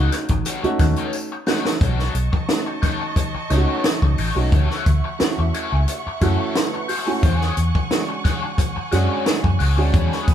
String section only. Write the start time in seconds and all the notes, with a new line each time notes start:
1.81 D#5 A5 C#6
4.52 E5 F#5 C#6
7.23 G#5
9.94 B5